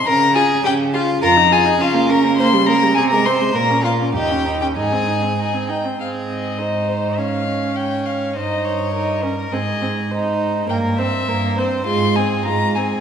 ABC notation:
X:1
M:2/4
L:1/16
Q:1/4=102
K:Dblyd
V:1 name="Violin"
b2 a2 g2 f2 | [K:Ab] b2 a2 f2 b2 | c'2 b2 a b c'2 | b2 f2 g3 g |
a4 a2 g2 | f2 e4 c2 | f4 g2 f2 | e2 d4 B2 |
e4 z4 | [K:Fm] g2 =e4 c2 | c'2 a2 b2 a2 |]
V:2 name="Violin"
B2 A2 G2 F2 | [K:Ab] B2 A2 F2 B2 | c2 B2 A B c2 | B2 F2 G3 G |
A6 z2 | A4 c4 | d4 d4 | c4 B4 |
A4 c4 | [K:Fm] B2 c2 B2 c2 | F2 A2 F2 A2 |]
V:3 name="Viola"
z2 F2 z2 F2 | [K:Ab] F E F E D B, D B, | B, G, B, G, C A, C A, | B, D B, D E D E D |
E C E C E C E C | C4 E4 | D2 D6 | E4 E2 D2 |
C2 C2 E4 | [K:Fm] B,2 C2 B,2 C2 | A,2 C2 A,2 C2 |]
V:4 name="Cello" clef=bass
D,4 D,4 | [K:Ab] F,,4 D,4- | D,4 C,4 | B,,4 E,,4 |
A,,6 z2 | A,,8- | A,,8 | G,,8 |
A,,8 | [K:Fm] G,,4 G,,4 | A,,4 A,,4 |]